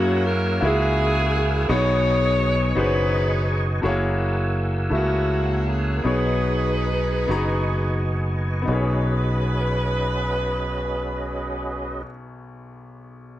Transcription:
Already playing: fingered electric bass F#2, grand piano A#3 E4 F#4 G#4 C#5, saxophone section A#3 C#4 F#4, tonewheel organ A#4 F#5 G#5 E6
0.26 saxophone section A#4
0.61 fingered electric bass C#2, grand piano A#3 E4 F#4 G#4 E5, saxophone section C#4 E4 G#4
1.69 fingered electric bass B1, grand piano B2 B3 D#4 F#4 G#4 C#5, saxophone section F#4 G#4 C#5, tonewheel organ B4 D#5 G#5 C#6
2.75 fingered electric bass F#1, grand piano B3 D#4 F#4 G#4 C5, saxophone section D#4 G#4 B4
2.84 grand piano C#5
3.82 fingered electric bass F#1, grand piano A3 E4 F#4 G#4, tonewheel organ A#4 F#5 G#5 E6
3.86 grand piano A#3 C#5
4.90 fingered electric bass C#2, grand piano A3 E4 F#4 G#4 E5, saxophone section A#3 F#4
4.94 grand piano A#3, saxophone section C#4
5.67 saxophone section G#4
6.04 fingered electric bass B1, grand piano B2 B3 D#4 F#4 G#4 C#5, tonewheel organ B4 D#5 C#6, saxophone section B4
6.08 saxophone section D#4 G#4
7.28 fingered electric bass F#1, grand piano B3 D#4 F#4 G#4 A#5
8.62 grand piano B3 D#4
8.68 fingered electric bass B1, grand piano B1 F#4, tonewheel organ C#4 F#4 G#4 B4 D#5, saxophone section B4
8.72 grand piano G#4 C#5

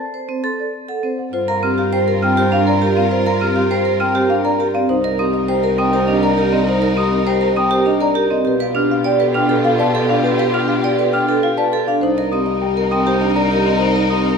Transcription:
0.00 marimba A5
0.14 vibraphone C5
0.29 vibraphone C4, marimba C5
0.44 vibraphone A4, marimba C6, celesta A6
0.60 marimba D5
0.89 vibraphone A4, marimba F#5
1.03 vibraphone C4, marimba C5
1.18 celesta F#5, marimba F#5
1.33 cello G2, violin section F4 A#4, vibraphone F4, marimba C5
1.48 vibraphone A#4, marimba F5, celesta A#5
1.63 vibraphone C4, marimba G4, celesta F6
1.78 vibraphone G4, marimba F5
1.93 marimba G4, vibraphone C5, celesta G5
2.08 vibraphone A#4, marimba A#4
2.22 vibraphone C4, marimba G5, celesta F6
2.37 vibraphone G4, marimba C5
2.52 vibraphone D4, celesta F5, marimba F5
2.67 vibraphone A#4, marimba D5, celesta A#5
2.82 vibraphone G4, marimba A#4
2.97 vibraphone C4, marimba D5, celesta F5
3.11 vibraphone F4, marimba C5
3.26 vibraphone A#4, marimba F5, celesta A#5
3.41 vibraphone C4, marimba G4, celesta F6
3.56 vibraphone G4, marimba F5
3.71 marimba G4, vibraphone C5, celesta G5
3.85 vibraphone A#4, marimba A#4
4.00 vibraphone C4, marimba G5, celesta F6
4.15 vibraphone G4, marimba C5
4.30 vibraphone D4, celesta F5, marimba F5
4.45 vibraphone A#4, marimba D5, celesta A#5
4.59 vibraphone G4, marimba A#4
4.74 vibraphone C4, marimba D5, celesta F5
4.89 cello C2, violin section D#4 A#4, vibraphone D#4, marimba C5
5.04 vibraphone A#4, marimba D#5
5.19 vibraphone C4, marimba G4, celesta D#6
5.33 marimba D#5
5.48 marimba G4, vibraphone C5, celesta G5
5.63 vibraphone A#4, marimba A#4
5.78 vibraphone C4, marimba G5, celesta D#6
5.93 vibraphone G4, marimba C5
6.08 vibraphone D4, celesta D#5, marimba D#5
6.23 vibraphone A#4, marimba D5, celesta A#5
6.38 vibraphone G4, marimba A#4
6.52 vibraphone C4, marimba D5, celesta D#5
6.67 vibraphone D#4, marimba C5
6.82 vibraphone A#4, marimba D#5
6.97 vibraphone C4, marimba G4, celesta D#6
7.13 marimba D#5
7.27 marimba G4, vibraphone C5, celesta G5
7.41 vibraphone A#4, marimba A#4
7.56 vibraphone C4, marimba G5, celesta D#6
7.71 vibraphone G4, marimba C5
7.86 vibraphone D4, marimba D#5, celesta D#5
8.01 vibraphone A#4, marimba D5, celesta A#5
8.15 vibraphone G4, marimba A#4
8.30 vibraphone C4, marimba D5, celesta D#5
8.45 cello B2, violin section F4 G4, vibraphone G4, marimba B4
8.60 vibraphone B4, marimba F5
8.75 vibraphone D4, marimba G4, celesta F6
8.91 marimba F5
9.04 marimba G4, vibraphone D5, celesta G5
9.20 marimba A4, vibraphone B4
9.34 vibraphone D4, marimba G5, celesta F6
9.49 vibraphone A4, marimba B4
9.64 vibraphone F4, marimba F5, celesta F5
9.79 vibraphone B4, marimba D5, celesta A5
9.94 marimba A4, vibraphone A4
10.09 vibraphone D4, marimba D5, celesta F5
10.23 vibraphone G4, marimba B4
10.38 vibraphone B4, marimba F5
10.53 vibraphone D4, marimba G4, celesta F6
10.68 marimba F5
10.83 marimba G4, vibraphone D5, celesta G5
10.99 vibraphone B4
11.12 vibraphone D4, marimba G5, celesta F6
11.27 vibraphone A4, marimba B4
11.43 vibraphone F4, marimba F5, celesta F5
11.57 vibraphone B4, marimba D5, celesta A5
11.72 marimba A4, vibraphone A4
11.86 vibraphone D4, marimba D5, celesta F5
12.01 cello C2, violin section D#4 A#4, vibraphone D#4, marimba C5
12.17 vibraphone A#4, marimba D#5
12.32 vibraphone C4, marimba G4, celesta D#6
12.46 marimba D#5
12.61 marimba G4, celesta G5
12.77 vibraphone A#4, marimba A#4
12.91 vibraphone C4, marimba G5, celesta D#6
13.06 vibraphone G4, marimba C5
13.22 vibraphone D4
13.36 vibraphone A#4, marimba D5, celesta A#5
13.50 vibraphone G4, marimba A#4
13.65 vibraphone C4, marimba D5, celesta D#5
13.79 vibraphone D#4, marimba C5
13.96 vibraphone A#4
14.10 vibraphone C4, marimba G4, celesta D#6
14.25 marimba D#5

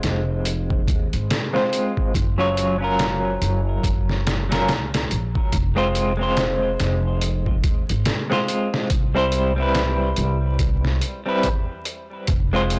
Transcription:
Already playing: clean electric guitar G#3 C4 F4 C5
0.03 upright bass F1, snare, closed hi-hat
0.45 closed hi-hat
0.70 kick
0.88 upright bass D#2, kick, closed hi-hat
1.13 upright bass G#1, closed hi-hat
1.30 snare, closed hi-hat
1.53 clean electric guitar G#3 C4 F4 C5, snare
1.73 closed hi-hat
1.97 kick
2.14 upright bass F#1, kick, closed hi-hat
2.38 clean electric guitar F#3 C#4 F4 C#5
2.57 closed hi-hat
2.78 clean electric guitar F#3 C#4 F4
2.84 clean electric guitar A#4
2.99 snare, closed hi-hat
3.42 upright bass F#1, closed hi-hat
3.83 upright bass F#1, kick, closed hi-hat
4.09 snare
4.27 snare, closed hi-hat
4.49 clean electric guitar F#3 C#4 F4 A#4, snare, closed hi-hat
4.69 upright bass C#2, snare, closed hi-hat
4.94 snare, closed hi-hat
5.11 upright bass A#1, closed hi-hat
5.35 kick
5.52 upright bass F1, kick, closed hi-hat
5.76 clean electric guitar G#3 C4 F4 C5
5.95 closed hi-hat
6.17 clean electric guitar G#3 C4
6.21 clean electric guitar F4 C5
6.37 snare, closed hi-hat
6.80 upright bass F1, snare, closed hi-hat
7.21 closed hi-hat
7.46 kick
7.64 upright bass D#2, kick, closed hi-hat
7.89 upright bass G#1, closed hi-hat
8.05 snare, closed hi-hat
8.30 clean electric guitar G#3 C4 F4 C5, snare
8.48 closed hi-hat
8.74 snare
8.90 upright bass C2, kick, closed hi-hat
9.15 clean electric guitar G3 C4 E4 C5
9.32 closed hi-hat
9.56 clean electric guitar G3 C4 E4
9.62 clean electric guitar B4
9.75 snare, closed hi-hat
10.16 upright bass C2, closed hi-hat
10.59 kick, closed hi-hat
10.85 snare
11.01 closed hi-hat
11.26 clean electric guitar G3 C4 E4 B4
11.43 upright bass E2, kick, closed hi-hat
11.85 closed hi-hat
12.27 upright bass F1, kick, closed hi-hat
12.53 clean electric guitar G#3 C4 F4 C5
12.70 closed hi-hat

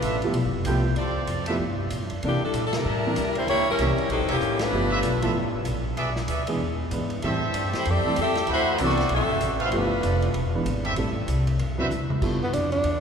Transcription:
Already playing: saxophone section A3 D4 F4 B4
0.02 upright bass A1, trumpet section F4 A4 B4 E5, hi-hat pedal, ride
0.22 grand piano F3 A3 B3 E4 G4, ride
0.33 upright bass B1, ride
0.44 upright bass G1
0.55 upright bass F1
0.64 upright bass C2, grand piano F3 A3 B3 E4 G4, trumpet section F4 A4 B4 G5, hi-hat pedal, ride
0.95 upright bass D2, trumpet section F4 A4 C5 D5, ride
1.27 upright bass F2, hi-hat pedal, ride
1.46 grand piano F3 A3 B3 G4, trumpet section F4 A4 B4 E5, ride
1.50 grand piano E4
1.59 upright bass G2
1.90 upright bass A2, hi-hat pedal, ride
2.01 upright bass G2
2.10 upright bass F2, ride
2.23 upright bass C3, grand piano E3 A#3 C4 D4 A4, saxophone section E3 A#3 D4 G4, ride
2.41 saxophone section G3 D4 E4 A4, muted upright bass stroke
2.54 upright bass A#2, hi-hat pedal, ride
2.66 saxophone section A4
2.73 saxophone section G3 D4 E4 A#4, snare, ride
2.84 upright bass A2, trumpet section A#4 D5 E5 A5
3.05 grand piano E3 A#3 C4 D4 A4
3.16 upright bass D2, hi-hat pedal, ride
3.35 saxophone section A#3 E4 G4 C5, ride
3.47 upright bass C#2, saxophone section A#3 E4 G4 C#5, ride
3.70 saxophone section G3 C#4 E4 A#4
3.79 upright bass C2, grand piano E3 G3 A#3 C#4 G4, trumpet section G4 A#4 C#5 E5, hi-hat pedal, ride
3.97 muted upright bass stroke, ride
4.09 upright bass A#1, saxophone section F#3 C4 D#4 A4, ride
4.20 upright bass G1
4.28 upright bass E1, saxophone section E3 A#3 C#4 G4, trumpet section G4 A#4 C#5 E5, ride
4.40 upright bass A1, hi-hat pedal
4.59 saxophone section A3 D4 F4 B4, snare, ride
4.72 upright bass G1, grand piano F3 A3 B3 G4 E5
4.91 trumpet section F4 A4 B4 E5
5.03 upright bass B1, hi-hat pedal, ride
5.22 grand piano F3 A3 B3 E4 A4, trumpet section F4 A4 B4 E5, ride
5.34 upright bass A1
5.65 upright bass A#1, hi-hat pedal, ride
5.97 upright bass B1, trumpet section G#4 B4 D5 E5, ride
6.16 snare
6.28 upright bass D2, trumpet section G#4 B4 D5 E5, hi-hat pedal, ride
6.47 grand piano E3 G#3 B3 D4 G#4, ride
6.60 upright bass E2
6.91 upright bass G#2, grand piano E3 G#3 B3 D4 B4, hi-hat pedal, ride
7.10 ride
7.22 upright bass A2, grand piano E3 G3 A3 C4 G4, trumpet section G4 A4 C5 E5, ride
7.54 upright bass G2, hi-hat pedal, ride
7.73 saxophone section A3 E4 G4 C5, muted upright bass stroke, snare, ride
7.85 upright bass F2, saxophone section A4, ride
7.89 saxophone section C4 G4 D5
8.05 grand piano E3 G3 A3 C4 A4, muted upright bass stroke
8.16 upright bass E2, hi-hat pedal, ride
8.21 saxophone section C4 G4 A4 E5
8.35 snare, ride
8.47 upright bass D2, trumpet section F#4 C5 E5 B5, ride
8.52 saxophone section A3 E4 F#4 C5
8.78 upright bass C2, grand piano E3 B3 C4 D4 F#4, hi-hat pedal, ride
8.84 saxophone section C4 F#4 A4 D5
8.89 snare
8.97 snare, ride
9.09 upright bass B1, ride
9.15 saxophone section C4 F#4 A4 E5
9.22 upright bass A1
9.31 upright bass F#1
9.41 upright bass A1, hi-hat pedal, ride
9.60 trumpet section F4 A4 B4 F5, ride
9.65 saxophone section A3 E4 F#4 C5
9.71 upright bass G1, grand piano F3 A3 B3 E4 G4, ride
9.77 saxophone section A3 D4 F4 B4
10.03 upright bass F1, hi-hat pedal, ride
10.22 ride
10.34 upright bass E1, ride
10.54 grand piano E3 G#3 B3 D4 B4
10.65 upright bass G#1, hi-hat pedal, ride
10.85 trumpet section G4 A4 C5 E5, ride
10.96 upright bass A1, grand piano G3 A3 C4 E4 A4, ride
11.27 upright bass C2, hi-hat pedal, ride
11.47 ride
11.59 upright bass D2, ride
11.78 grand piano F#3 C4 D4 E4 B4, trumpet section F#4 B4 C5 E5
11.90 upright bass E2, hi-hat pedal, mid tom
12.10 mid tom
12.22 upright bass G2, grand piano G3 B3 E4 F4 A4, kick, crash
12.43 tenor saxophone B3
12.53 upright bass F2, tenor saxophone D4, hi-hat pedal, ride
12.72 tenor saxophone D4, ride
12.84 upright bass E2, ride

